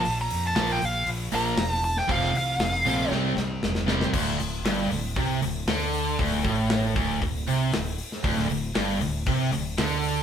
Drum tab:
CC |----------------|----------------|x---------------|----------------|
HH |o-o-o-o-o-o-o-o-|o-o-o-o---------|--o-o-o-o-o-o-o-|o-o-o-o-o-o-o-o-|
SD |----o-------o--o|-o--o---o-o-oooo|----o-------o---|-o--o-------o--o|
BD |----------------|o---------------|o-------o-------|o-o---o-o-------|

CC |----------------|
HH |o-o-o-o-o-o-o-o-|
SD |-o--o-------o---|
BD |o-------o-------|